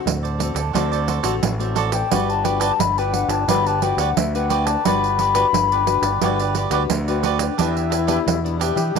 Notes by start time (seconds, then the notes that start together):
Already playing: A3 C4 F#4
0.06 D2 A2, pandeiro
0.23 A4 C5 D5, pandeiro
0.39 A3 C4 F#4, pandeiro
0.54 D2 A4 C5 D5, pandeiro
0.73 D2 D3 A3 C4 F#4 A4 C5 D5, pandeiro
0.92 A4 C5 D5, pandeiro
1.07 F#4 A4 C5 D5, pandeiro
1.23 A1 A3 C4 F#4 A4 C5 D5, pandeiro
1.42 A1 A2, pandeiro
1.59 A3 C4 F#4 A4 C5 D5, pandeiro
1.75 F#4 A4 C5 D5, pandeiro
1.92 A4 C5 D5 G5, pandeiro
2.11 G1 G3 D4 F#4 G4 B4 D5 F#5, pandeiro
2.30 A5, pandeiro
2.44 D4 F#4 G4 B4 D5 G5, pandeiro
2.60 F#4 G4 B4 D5 A5, pandeiro
2.79 G1 D3 B5, pandeiro
2.98 D4 F#4 G4 B4 D5 G5, pandeiro
3.13 F#5, pandeiro
3.28 G1 G4 B4 D5 A5, pandeiro
3.48 G1 G3 D4 F#4 G4 B4 D5 B5, pandeiro
3.66 G4 B4 D5 A5, pandeiro
3.81 D4 F#4 G4 B4 D5 G5, pandeiro
3.97 D2 F#4 G4 B4 D5 F#5, pandeiro
4.16 D2 D3 E5, pandeiro
4.35 D4 F#4 G4 B4 D5 F#5, pandeiro
4.50 F#4 G4 B4 D5 G5, pandeiro
4.66 G4 B4 D5 A5, pandeiro
4.84 G1 G3 D4 F#4 G4 B4 D5 B5, pandeiro
5.04 pandeiro
5.19 F#4 G4 B4 D5, pandeiro
5.34 D4 F#4 G4 B4 D5, pandeiro
5.53 G1 D3, pandeiro
5.72 G4 B4 D5, pandeiro
5.86 D4 F#4 B4, pandeiro
6.02 G1 G4 B4 D5, pandeiro
6.21 G1 G3 D4 F#4 G4 B4 D5, pandeiro
6.39 G4 B4 D5, pandeiro
6.55 F#4 G4 B4 D5, pandeiro
6.70 D2 D4 F#4 G4 B4 D5, pandeiro
6.90 D2 D3, pandeiro
7.08 D4 F#4 G4 B4 D5, pandeiro
7.23 F#4 G4 B4 D5, pandeiro
7.39 G4 B4, pandeiro
7.57 E2 E3 B3 D4 E4 G4 B4 E5, pandeiro
7.76 G4 B4 E5, pandeiro
7.90 D4 G4 B4 E5, pandeiro
8.07 B3 D4 G4 B4 E5, pandeiro
8.26 E2 B2, pandeiro
8.44 B3 D4 G4, pandeiro
8.60 D4 G4 B4 E5, pandeiro
8.75 E3 B3 D4 G4 B4 E5, pandeiro
8.95 E3 D4